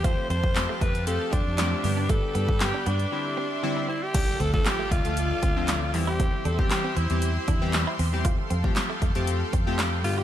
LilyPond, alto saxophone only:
\new Staff \with { instrumentName = "Alto saxophone" } { \time 4/4 \key f \lydian \tempo 4 = 117 c''8 c''4 b'8 a'8 d'4. | a'4 g'8 d'2 e'16 g'16~ | g'8 a'16 a'16 g'8 f'2 e'16 g'16~ | g'8 a'16 g'16 g'8 e'2 r8 |
r2. r8 f'16 g'16 | }